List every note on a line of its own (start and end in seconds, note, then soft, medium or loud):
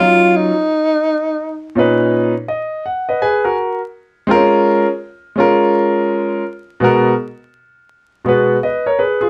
0.00 0.50 F#3 medium
0.00 0.51 C#4 medium
0.00 0.52 D#4 medium
0.00 0.38 F4 loud
0.00 0.52 F4 medium
0.37 1.79 D#4 loud
1.75 2.31 A#2 medium
1.75 2.32 C#4 medium
1.75 2.32 D#4 medium
1.75 2.33 B4 medium
2.48 2.83 D#5 medium
2.86 3.19 F#5 medium
3.09 3.21 B4 medium
3.09 3.21 D#5 medium
3.22 3.44 G#4 medium
3.22 3.44 B4 medium
3.22 3.55 G#5 medium
3.44 3.79 F#4 medium
3.44 3.79 A#4 medium
4.27 4.83 G#3 medium
4.27 4.38 C4 medium
4.27 4.85 F4 medium
4.31 4.87 C#4 medium
4.31 4.85 A#4 loud
5.36 6.40 G#3 medium
5.36 6.41 C#4 medium
5.36 6.42 F4 medium
5.40 6.42 A#4 medium
6.80 7.10 B2 medium
6.80 7.11 G#3 medium
6.80 7.11 B3 medium
6.80 7.12 F#4 medium
6.84 7.12 A#4 medium
8.25 8.54 B2 medium
8.25 8.55 G#3 medium
8.25 8.56 B3 medium
8.25 8.56 F#4 medium
8.29 8.56 B4 medium
8.63 8.86 B4 soft
8.63 8.85 D#5 medium
8.86 8.99 A#4 medium
8.86 8.99 C#5 medium
8.99 9.19 G#4 medium
8.99 9.21 B4 medium
9.21 9.30 F4 medium
9.21 9.30 G#4 medium